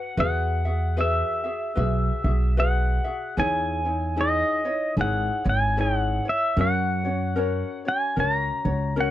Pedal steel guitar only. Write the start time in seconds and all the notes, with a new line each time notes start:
Already playing: F#5
0.20 F#5
1.01 E5
2.60 F#5
3.40 G#5
4.21 D#5
5.01 F#5
5.49 G#5
5.81 G5
5.99 F#5
6.29 E5
6.61 F#5
7.88 G#5
8.20 A#5
9.01 F#5